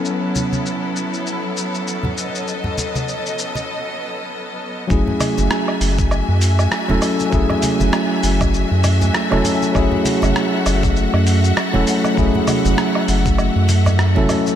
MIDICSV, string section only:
0, 0, Header, 1, 2, 480
1, 0, Start_track
1, 0, Tempo, 606061
1, 42, Time_signature, 4, 2, 24, 8
1, 11527, End_track
2, 0, Start_track
2, 0, Title_t, "String section"
2, 0, Program_c, 0, 48
2, 0, Note_on_c, 0, 54, 66
2, 0, Note_on_c, 0, 59, 61
2, 0, Note_on_c, 0, 61, 58
2, 0, Note_on_c, 0, 64, 69
2, 0, Note_on_c, 0, 69, 77
2, 1702, Note_off_c, 0, 64, 0
2, 1723, Note_on_c, 0, 75, 66
2, 3849, Note_off_c, 0, 54, 0
2, 3850, Note_off_c, 0, 59, 0
2, 3850, Note_off_c, 0, 61, 0
2, 3851, Note_off_c, 0, 69, 0
2, 3861, Note_off_c, 0, 75, 0
2, 3882, Note_on_c, 0, 66, 82
2, 3882, Note_on_c, 0, 80, 83
2, 3883, Note_on_c, 0, 57, 72
2, 3884, Note_on_c, 0, 76, 72
2, 7691, Note_off_c, 0, 80, 0
2, 7722, Note_on_c, 0, 78, 90
2, 11527, Note_off_c, 0, 57, 0
2, 11527, Note_off_c, 0, 66, 0
2, 11527, Note_off_c, 0, 76, 0
2, 11527, Note_off_c, 0, 78, 0
2, 11527, End_track
0, 0, End_of_file